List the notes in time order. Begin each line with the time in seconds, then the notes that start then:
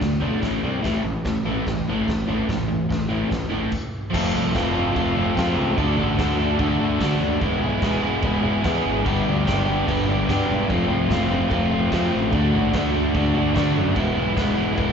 0.01 D2 D3 A3, kick, snare, floor tom
0.21 B1 D3 A3 D4, floor tom
0.41 A1 A2 E3 A3, kick, snare, floor tom
0.63 C2 C3 G3 C4, floor tom
0.81 A1 A2 E3 A3, kick, snare, floor tom
1.02 A1 A2 E3, floor tom
1.25 A1 A2 E3, kick, snare, floor tom
1.45 A1 A2 E3 A3, floor tom
1.67 A1 A2 E3, kick, snare, floor tom
1.88 A1 A2 E3 A3, floor tom
2.08 A1 A2 E3, kick, snare, floor tom
2.27 A1 A2 E3 A3, floor tom
2.49 A1 A2 E3, kick, snare, floor tom
2.68 A2 E3, floor tom
2.89 A1 A2 E3, kick, snare, floor tom
3.09 A1 A2 E3 A3, floor tom
3.29 A1 A2 E3, kick, snare, floor tom
3.49 A1 A2 E3 A3, floor tom
3.72 kick, crash
4.10 F3 A3 C4, kick, crash
4.15 F1 F4 A4
4.30 F4 A4
4.35 C2 C4
4.53 F1 A3 C4 F4 A4, kick, snare, crash
4.73 C4 F4 A4
4.92 F1 F3 A3 C4
4.96 F4 A4, kick, crash
5.15 F1 C4 F4 A4
5.35 F2 A3 C4 F4, kick, snare, crash
5.40 A4
5.57 C#2
5.77 D2 D3 A3 D4 F#4 A4, kick, crash
5.97 A1 F#4 A4
6.01 D4
6.17 D2 A3 D4 F#4 A4, kick, snare, crash
6.39 F#4 A4
6.43 D4
6.59 D2 D3 A3 D4 F#4, kick, crash
6.63 A4
6.79 D2 A4
6.84 D4 F#4
7.00 D3 A3 D4 F#4, kick, snare, crash
7.04 A4
7.20 D#2
7.41 E1 E3 G#3 B3 E4 G#4, kick, crash
7.60 B1 G#4
7.65 B3 E4
7.80 E1 G#3 B3, kick, snare, crash
7.84 E4 G#4
8.02 E4 G#4
8.06 B3
8.22 E1 E3 G#3 B3 E4, kick, crash
8.26 G#4
8.42 E1 E4 G#4
8.46 B3
8.62 E2 G#3 B3 E4, kick, snare, crash
8.67 G#4
8.86 G#1
9.02 G2 D3 G3 B3 D4, kick, crash
9.07 G1 G4
9.24 B3 D4 G4
9.29 D2 G3
9.43 G3 B3 D4 G4
9.47 G1, kick, snare, crash
9.64 D4 G4
9.69 G3 B3
9.85 G1 G2 D3 G3 B3 D4, kick, crash
9.90 G4
10.06 G1 B3 D4 G4
10.11 G3
10.29 G2 G3 B3 D4, kick, snare, crash
10.33 G4
10.49 E1
10.68 F1 F3 A3 C4, kick, crash
10.72 F4
10.88 C2 A3 C4 F4
11.09 F1 F3 A3 C4 F4, kick, snare, crash
11.28 A3 C4 F4
11.48 F1 F3 A3 C4, kick, crash
11.53 F4
11.70 F1 A3 C4 F4
11.91 F2 F3 A3 C4 F4, kick, snare, crash
12.15 A1
12.30 D2 D3 A3 D4, kick, crash
12.35 F#4
12.51 A1 D4 F#4
12.56 A3
12.72 D2 D3 A3, kick, snare, crash
12.76 D4 F#4
12.90 D4 F#4
12.95 A3
13.13 D2 D3 A3 D4 F#4, kick, crash
13.33 D2 D4 F#4
13.38 A3
13.52 D3 A3 D4, kick, crash
13.56 D3 F#4, snare
13.78 F#2
13.94 E1 E3 G#3 B3 E4, kick, crash
14.14 B1 G#3 B3 E4
14.33 E3 G#3 B3
14.37 E1 E4, kick, snare, crash
14.54 G#3 B3 E4
14.72 E3 G#3 B3
14.77 E1 E4, kick, crash